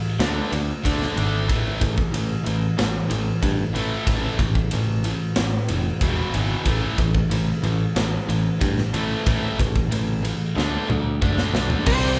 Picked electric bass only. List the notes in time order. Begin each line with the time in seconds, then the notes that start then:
0.19 D2
0.52 D2
0.85 D2
1.16 G#1
1.49 A1
1.82 A1
2.14 A1
2.47 A1
2.80 A1
3.10 A1
3.43 G2
3.75 A1
4.08 A1
4.39 A1
4.74 A1
5.37 A1
5.70 F1
6.02 E1
6.35 G#1
6.66 A1
6.99 A1
7.30 A1
7.63 A1
7.96 A1
8.29 A1
8.61 G2
8.94 A1
9.27 A1
9.60 A1
9.92 A1
10.56 D2
10.90 D2
11.22 D2
11.54 B1
11.87 C2